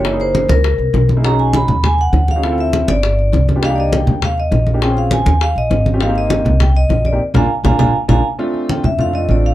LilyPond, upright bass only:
\new Staff \with { instrumentName = "Upright bass" } { \clef bass \time 4/4 \key bes \mixolydian \tempo 4 = 201 ges,,4. des,4 c,8 ces,4~ | ces,4. dis,4. d,4~ | d,4. g,,4. c,4~ | c,4. ees,4. bes,,4~ |
bes,,4. ees,4 bes,,8 aes,,4~ | aes,,4. c,4. bes,,4 | r8 bes,,8 r8 bes,,8 bes,,8 r8 bes,,8 r8 | \key f \mixolydian r4. f,4. a,,4 | }